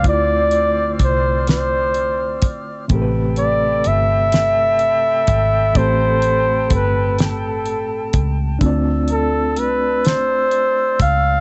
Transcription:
<<
  \new Staff \with { instrumentName = "Flute section" } { \time 6/8 \key d \dorian \tempo 4. = 42 <c' d'' d''' f'''>2. | <a' g'' a'' b''>2.~ | <a' g'' a'' b''>2. | <d'' e'''>2. | }
  \new Staff \with { instrumentName = "Flugelhorn" } { \time 6/8 \key d \dorian d''4 c''8 c''4 r8 | r8 d''8 e''2 | c''4 b'8 a'4 r8 | r8 a'8 b'8 c''4 f''8 | }
  \new Staff \with { instrumentName = "Reed electric piano" } { \time 6/8 \key d \dorian <d a e' f' d''>2. | <c a c' g' bes' b'>2. | <a, a c' g' a'>2. | <a c' d' f' d''>2. | }
  \new Staff \with { instrumentName = "Fingered electric bass" } { \clef bass \time 6/8 \key d \dorian d,4 c,4. gis,,8 | a,,4 g,,4. gis,,8 | a,,4 g,,4. cis,8 | d,4 c,4. cis,8 | }
  \new DrumStaff \with { instrumentName = "Drums" } \drummode { \time 6/8 <hh bd>8 hh8 <hh bd>8 <hh sn>8 hh8 <hh bd>8 | <hh bd>8 hh8 hh8 <hh sn>8 hh8 <hh bd>8 | <hh bd>8 hh8 <hh bd>8 <hh sn>8 hh8 <hh bd>8 | <hh bd>8 hh8 hh8 <hh sn>8 hh8 <hh bd>8 | }
>>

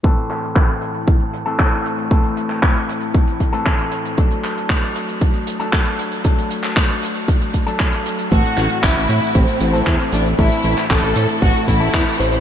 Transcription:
<<
  \new Staff \with { instrumentName = "Violin section" } { \time 4/4 \key a \dorian \tempo 4 = 116 r1 | r1 | r1 | r1 |
fis'4 e'4 c'4. d'8 | e'4 a'4 fis'8 e'4 c''8 | }
  \new Staff \with { instrumentName = "Clean electric guitar" } { \time 4/4 \key a \dorian <a, e a c' a'>2~ <a, e a c' a'>8. <a, e a c' a'>4~ <a, e a c' a'>16 | <a, e a c' a'>2~ <a, e a c' a'>8. <a, e a c' a'>4~ <a, e a c' a'>16 | <fis a d' a'>2~ <fis a d' a'>8. <fis a d' a'>4~ <fis a d' a'>16 | <fis a d' a'>2~ <fis a d' a'>8. <fis a d' a'>4~ <fis a d' a'>16 |
<a, e a c' a'>2~ <a, e a c' a'>8. <a, e a c' a'>4~ <a, e a c' a'>16 | <a, e a c' a'>2~ <a, e a c' a'>8. <a, e a c' a'>4~ <a, e a c' a'>16 | }
  \new Staff \with { instrumentName = "Analog synth bass" } { \clef bass \time 4/4 \key a \dorian r1 | r1 | r1 | r1 |
a,,16 r16 a,,16 r16 a,,16 a,,16 a,16 r16 a,,16 r16 a,,8 e,16 r16 a,,8 | a,,16 r16 a,,16 r16 a,,16 a,,16 a,16 r16 a,,16 r16 a,,8 e,16 r16 a,,8 | }
  \new DrumStaff \with { instrumentName = "Drums" } \drummode { \time 4/4 <hh bd>16 hh16 <hc hh>16 hh16 <hc hh bd>16 hh16 hh16 hh16 <hh bd>16 hh16 hh16 hh16 <hc bd>16 hh16 hh16 hh16 | <hh bd>16 hh16 hh16 <hc hh>16 <hc bd>16 hh16 hh16 hh16 <hh bd>16 hh16 <hh bd>16 hh16 <hc hh bd>16 hh16 hh16 hh16 | <hh bd>16 hh16 <hc hh>16 hh16 <hc hh bd>16 hh16 hh16 hh16 <hh bd>16 hh16 hh16 hh16 <hc hh bd>16 hh16 hh16 hh16 | <hh bd>16 hh16 hh16 <hc hh>16 <hc hh bd>16 hh16 hh16 hh16 <hh bd>16 hh16 <hh bd>16 hh16 <hc hh bd>16 hh16 hh16 hh16 |
<hh bd>16 hh16 <hc hh>16 hh16 <hc hh bd>16 hh16 hh16 hh16 <hh bd>16 hh16 hh16 hh16 <hc hh bd>16 hh16 hh16 hh16 | <hh bd>16 hh16 hh16 <hc hh>16 <hc hh bd>16 hh16 hh16 hh16 <hh bd>16 hh16 <hh bd>16 hh16 <hc hh bd>16 hh16 hh16 hh16 | }
>>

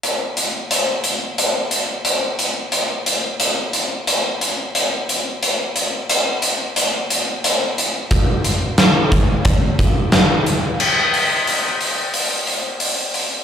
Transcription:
\new DrumStaff \with { instrumentName = "Drums" } \drummode { \time 4/4 \tempo 4 = 89 hh8 hh8 hh8 hh8 hh8 hh8 hh8 hh8 | hh8 hh8 hh8 hh8 hh8 hh8 hh8 hh8 | hh8 hh8 hh8 hh8 hh8 hh8 hh8 hh8 | <hh bd>8 hh8 <hh sn>8 <hh bd>8 <hh bd>8 <hh bd>8 <hh sn>8 hh8 |
cymc8 hho8 hho8 hho8 hho8 hho8 hho8 hho8 | }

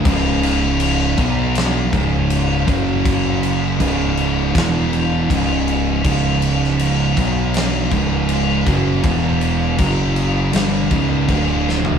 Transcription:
<<
  \new Staff \with { instrumentName = "Distorted electric guitar" } { \clef bass \time 4/4 \key cis \minor \tempo 4 = 80 <cis, gis, cis>4. <b, fis b>4 <cis, gis, cis>4 <fis, cis fis>8~ | <fis, cis fis>4 <cis, gis, cis>4 <e, b, e>4 <cis, gis, cis>4 | <cis, gis, cis>4. <b, fis b>4 <cis, gis, cis>4 <fis, cis fis>8 | <e, b, e>4 <fis, cis fis>4 <g, d g>8 <cis, gis, cis>8 <d, a, d>4 | }
  \new Staff \with { instrumentName = "Distorted electric guitar" } { \clef bass \time 4/4 \key cis \minor <cis, gis, cis>4. <b, fis b>4 <cis, gis, cis>4 <fis, cis fis>8~ | <fis, cis fis>4 <cis, gis, cis>4 <e, b, e>4 <cis, gis, cis>4 | <cis, gis, cis>4. <b, fis b>4 <cis, gis, cis>4 <fis, cis fis>8 | <e, b, e>4 <fis, cis fis>4 <g, d g>8 <cis, gis, cis>8 <d, a, d>4 | }
  \new Staff \with { instrumentName = "Picked electric bass" } { \clef bass \time 4/4 \key cis \minor cis,,4. b,,4 cis,,4 fis,,8~ | fis,,4 cis,,4 e,,4 cis,,4 | cis,,4. b,,4 cis,,4 fis,,8 | e,,4 fis,,4 g,,8 cis,,8 d,,4 | }
  \new DrumStaff \with { instrumentName = "Drums" } \drummode { \time 4/4 <cymc bd>8 cymc8 cymc8 <cymc bd>8 <cymc sn>8 <cymc bd>8 cymc8 <cymc bd>8 | <cymc bd>8 cymc8 <cymc bd>8 cymc8 <cymc bd sn>8 cymc8 <cymc bd>8 cymc8 | <cymc bd>8 cymc16 sn16 cymc8 <cymc bd>8 <cymc sn>8 <cymc bd>8 cymc8 <cymc bd>8 | <cymc bd>8 cymc8 <cymc bd>8 cymc8 <cymc sn>8 <cymc bd>8 <cymc bd>8 sn16 tomfh16 | }
>>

